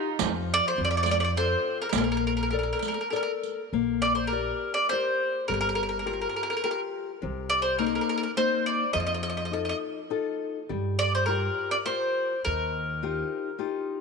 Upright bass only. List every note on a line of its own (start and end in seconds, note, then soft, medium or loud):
0.21 0.58 F2 medium
0.78 1.53 F2 medium
1.94 2.71 A#1 medium
3.73 4.49 A#1 medium
5.50 6.24 G1 medium
7.23 7.97 C2 medium
8.95 9.70 F2 medium
10.70 11.46 G2 medium
12.46 13.21 D#2 medium